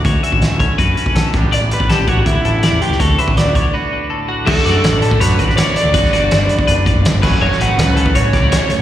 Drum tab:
CC |----------------|----------------|----------------|x---------------|
HH |x-x-x-x-x-x-x-x-|x-x-x-x-x-x-x-x-|x-x-x-x---------|--x-x-x-x-x-x-x-|
SD |----o-------o---|----o-------o--o|----o-----------|-oo-o------oo---|
BD |o--o--o-o--o--o-|---o--o-o-------|o--o--o---------|o------o--o-----|

CC |--------------x-|----------------|
HH |x-x-x-x-x-x-x---|--x-x-x-x-x-x-x-|
SD |-oo-o-------o---|-o--o-----o-o---|
BD |o------o--o---o-|-------o--o-----|